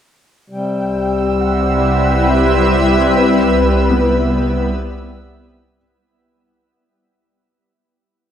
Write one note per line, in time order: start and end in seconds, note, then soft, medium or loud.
0.50 3.10 C2 medium
0.50 5.85 C3 medium
0.50 5.85 G3 medium
0.50 5.77 G3 medium
0.50 1.42 G5 loud
0.50 5.79 E6 medium
0.55 3.14 C4 medium
0.83 5.75 E4 medium
0.95 5.75 B4 medium
1.12 5.77 E5 medium
1.40 2.31 F#5 medium
2.29 3.18 E5 medium
3.14 5.72 C2 medium
3.14 5.76 B3 medium
3.14 5.34 B4 loud
3.90 5.82 B3 soft